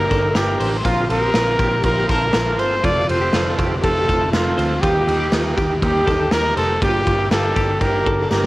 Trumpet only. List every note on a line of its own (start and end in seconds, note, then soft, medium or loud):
0.00 0.38 A#4 loud
0.36 0.73 G4 medium
0.85 1.08 F4 loud
1.10 1.81 A#4 loud
1.85 2.08 A#4 loud
2.09 2.61 A#4 loud
2.59 2.86 C5 loud
2.85 3.09 D5 loud
3.09 3.53 C5 loud
3.83 4.29 A4 loud
4.32 4.83 F4 medium
4.81 5.57 G4 loud
5.84 6.34 G4 loud
6.32 6.57 A#4 loud
6.57 6.80 A4 loud
6.83 7.28 G4 loud
7.32 7.83 A4 loud
7.81 8.30 A#4 loud
8.31 8.46 A#4 medium